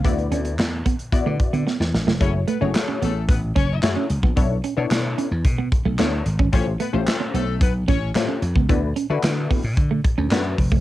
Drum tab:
HH |xxxx--xxx-xx----|x-x-x-x-x-x-x-x-|x-x-x-x-x-x-x-x-|x-x-x-x-x-x-x-x-|
CP |----x-----------|----x-------x---|----x-------x---|----x-------x---|
SD |----o-------oooo|----o-------o---|----o-------o---|----o-------o---|
BD |o-----o-o-o-----|o-------o-o----o|o-------o-o----o|o-------o-o----o|

HH |x-x-x-o-x-x-x-o-|
CP |----x-------x---|
SD |----o-------o---|
BD |o-----o-o-o---oo|